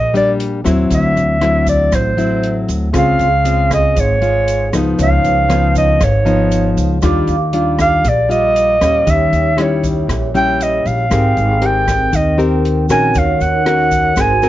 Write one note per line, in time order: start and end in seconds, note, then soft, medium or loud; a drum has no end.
0.00 0.61 A#1 medium
0.00 0.89 A#2 medium
0.00 0.16 D#5 medium
0.14 0.61 G3 medium
0.14 0.61 A#3 medium
0.14 0.61 D4 medium
0.14 0.31 D5 medium
0.14 closed hi-hat soft
0.14 shaker soft
0.40 closed hi-hat soft
0.64 0.89 D#2 medium
0.64 1.37 F#3 medium
0.64 1.37 C4 medium
0.64 1.38 E4 medium
0.64 cross-stick medium
0.64 closed hi-hat soft
0.64 shaker medium
0.90 1.15 D2 medium
0.90 1.90 D3 medium
0.90 1.65 E5 medium
0.90 kick medium
0.90 closed hi-hat soft
0.90 shaker medium
1.16 1.89 D2 medium
1.16 closed hi-hat soft
1.16 shaker soft
1.41 2.14 F#3 medium
1.41 2.14 C4 medium
1.41 2.14 E4 medium
1.41 cross-stick medium
1.41 closed hi-hat soft
1.67 1.97 D5 medium
1.67 kick medium
1.67 closed hi-hat soft
1.67 shaker medium
1.92 2.65 A1 medium
1.92 2.92 A2 medium
1.92 2.70 C5 medium
1.92 kick medium
1.92 cross-stick medium
1.92 closed hi-hat soft
1.92 shaker medium
2.17 2.90 F#3 medium
2.17 2.90 C4 medium
2.17 2.91 E4 medium
2.17 closed hi-hat soft
2.17 shaker soft
2.43 closed hi-hat soft
2.68 2.93 D2 medium
2.68 closed hi-hat soft
2.68 shaker medium
2.93 3.18 C#2 medium
2.93 3.93 C#3 medium
2.93 3.27 G#3 medium
2.93 3.27 C4 medium
2.93 3.27 F4 medium
2.93 4.94 G#4 soft
2.93 4.95 C6 soft
2.93 kick medium
2.93 cross-stick medium
2.93 closed hi-hat soft
2.93 shaker medium
2.97 4.96 F5 medium
2.97 3.69 F5 medium
3.19 3.92 C#2 medium
3.19 closed hi-hat soft
3.19 shaker soft
3.45 4.18 G#3 soft
3.45 4.18 C4 medium
3.45 4.18 F4 medium
3.45 closed hi-hat soft
3.45 shaker medium
3.71 4.02 D#5 medium
3.71 kick medium
3.71 cross-stick medium
3.71 closed hi-hat soft
3.71 shaker medium
3.95 4.69 G#1 medium
3.95 4.96 G#2 medium
3.95 kick medium
3.95 closed hi-hat soft
3.95 shaker medium
4.00 4.75 C#5 medium
4.22 4.69 G#3 medium
4.22 4.69 F4 medium
4.22 closed hi-hat soft
4.22 shaker soft
4.48 closed hi-hat soft
4.48 shaker soft
4.73 4.97 C#2 medium
4.73 5.46 F3 medium
4.73 5.46 B3 medium
4.73 5.46 D#4 medium
4.73 cross-stick medium
4.73 closed hi-hat soft
4.73 shaker medium
4.95 5.22 C#2 medium
4.95 5.98 C#3 medium
4.95 6.97 D#4 medium
4.95 6.98 B4 soft
4.95 6.99 C#5 soft
4.95 kick medium
4.99 7.00 F5 medium
4.99 5.73 F5 loud
4.99 closed hi-hat soft
4.99 shaker medium
5.24 5.97 C#2 medium
5.24 closed hi-hat soft
5.24 shaker soft
5.49 6.00 F3 medium
5.49 6.01 B3 medium
5.49 6.01 D#4 medium
5.49 cross-stick medium
5.49 closed hi-hat soft
5.49 shaker medium
5.75 6.05 D#5 medium
5.75 kick soft
5.75 closed hi-hat soft
5.75 shaker medium
6.00 6.73 G#1 medium
6.00 7.00 G#2 medium
6.00 6.79 C#5 medium
6.00 kick medium
6.00 cross-stick medium
6.00 closed hi-hat soft
6.00 shaker medium
6.25 6.98 F3 medium
6.25 6.98 B3 medium
6.25 6.99 D#4 medium
6.25 closed hi-hat soft
6.25 shaker soft
6.52 closed hi-hat soft
6.52 shaker soft
6.77 7.01 C#2 medium
6.77 closed hi-hat soft
6.77 shaker medium
7.01 7.26 D#2 medium
7.01 8.02 D#3 medium
7.01 7.35 G3 medium
7.01 7.36 D4 medium
7.01 7.36 F4 medium
7.01 9.02 G4 medium
7.01 9.03 D6 medium
7.01 kick medium
7.01 cross-stick medium
7.01 closed hi-hat soft
7.01 shaker medium
7.05 9.04 F5 medium
7.28 8.01 D#2 medium
7.28 closed hi-hat soft
7.28 shaker soft
7.53 8.04 G3 medium
7.53 8.05 D4 medium
7.53 8.05 F4 medium
7.53 closed hi-hat soft
7.79 8.10 F5 medium
7.79 kick medium
7.79 cross-stick medium
7.79 closed hi-hat soft
7.79 shaker medium
8.04 8.77 A#1 medium
8.04 9.04 A#2 medium
8.04 kick medium
8.04 closed hi-hat soft
8.04 shaker medium
8.09 8.31 D5 medium
8.29 8.77 G3 medium
8.29 8.77 F4 medium
8.29 9.12 D#5 medium
8.29 closed hi-hat soft
8.29 shaker soft
8.56 closed hi-hat soft
8.56 shaker soft
8.81 9.05 D#2 medium
8.81 9.54 G3 medium
8.81 9.54 C#4 medium
8.81 cross-stick medium
8.81 closed hi-hat soft
8.81 shaker medium
9.05 9.31 D#2 medium
9.05 10.06 D#3 medium
9.05 11.06 G4 soft
9.05 11.07 C#5 soft
9.05 11.08 E5 medium
9.05 kick medium
9.05 closed hi-hat soft
9.05 shaker medium
9.10 9.64 E5 medium
9.32 10.05 D#2 medium
9.32 closed hi-hat soft
9.32 shaker soft
9.57 10.30 G3 soft
9.57 10.30 C#4 medium
9.57 10.31 E4 medium
9.57 cross-stick medium
9.57 closed hi-hat soft
9.63 9.86 C#5 medium
9.84 kick medium
9.84 closed hi-hat soft
9.84 shaker medium
10.08 10.82 A#1 medium
10.08 11.08 A#2 medium
10.08 kick medium
10.08 cross-stick medium
10.08 closed hi-hat soft
10.08 shaker medium
10.34 11.07 G3 medium
10.34 11.07 C#4 medium
10.34 11.07 E4 medium
10.34 10.65 G5 loud
10.34 closed hi-hat soft
10.34 shaker soft
10.61 10.88 D#5 medium
10.61 closed hi-hat soft
10.61 shaker soft
10.86 11.09 A#1 medium
10.86 11.67 F5 medium
10.86 closed hi-hat soft
10.86 shaker medium
11.09 11.35 G#1 medium
11.09 12.11 G#3 medium
11.09 12.35 C4 medium
11.09 11.58 C4 medium
11.09 11.58 G4 soft
11.09 11.58 A#4 medium
11.09 kick medium
11.09 cross-stick medium
11.09 closed hi-hat soft
11.09 shaker medium
11.13 12.37 A#4 soft
11.13 12.38 G5 medium
11.37 12.09 G#1 medium
11.37 closed hi-hat soft
11.37 shaker soft
11.61 12.12 C4 medium
11.61 12.13 G4 medium
11.61 12.13 A#4 medium
11.61 closed hi-hat soft
11.66 12.17 G5 medium
11.88 kick medium
11.88 cross-stick medium
11.88 closed hi-hat soft
11.88 shaker medium
12.13 12.86 D#2 medium
12.13 13.12 D#3 medium
12.13 12.40 D#5 medium
12.13 kick medium
12.13 closed hi-hat soft
12.13 shaker medium
12.37 13.14 C4 soft
12.37 12.85 C4 medium
12.37 12.85 G4 medium
12.37 12.86 A#4 medium
12.37 closed hi-hat soft
12.37 shaker soft
12.65 closed hi-hat soft
12.89 13.13 A#1 medium
12.89 13.62 C#4 medium
12.89 13.62 F#4 medium
12.89 13.63 A#4 medium
12.89 13.19 G#5 medium
12.89 cross-stick medium
12.89 closed hi-hat soft
12.89 shaker medium
13.11 14.14 D#3 medium
13.11 14.13 D#4 soft
13.11 14.14 A#4 soft
13.11 kick medium
13.11 shaker medium
13.15 13.39 D#2 medium
13.15 14.15 C#5 soft
13.15 13.43 F5 medium
13.15 closed hi-hat soft
13.40 14.13 D#2 medium
13.40 14.22 F#5 medium
13.40 closed hi-hat soft
13.40 shaker soft
13.65 14.15 C#4 medium
13.65 14.15 F#4 medium
13.65 14.15 A#4 medium
13.65 cross-stick medium
13.65 closed hi-hat soft
13.91 kick medium
13.91 closed hi-hat soft
13.91 shaker medium
14.14 14.49 G#1 medium
14.14 14.49 G#3 medium
14.14 14.32 C4 medium
14.14 14.49 F#4 soft
14.14 14.32 F#4 medium
14.14 14.49 A#4 soft
14.14 14.32 A#4 medium
14.14 14.49 C5 soft
14.14 kick medium
14.14 cross-stick medium
14.14 closed hi-hat soft
14.14 shaker medium
14.21 14.49 G#5 loud
14.42 14.49 C4 medium
14.42 14.49 F#4 medium
14.42 14.49 A#4 medium
14.42 closed hi-hat soft
14.42 shaker soft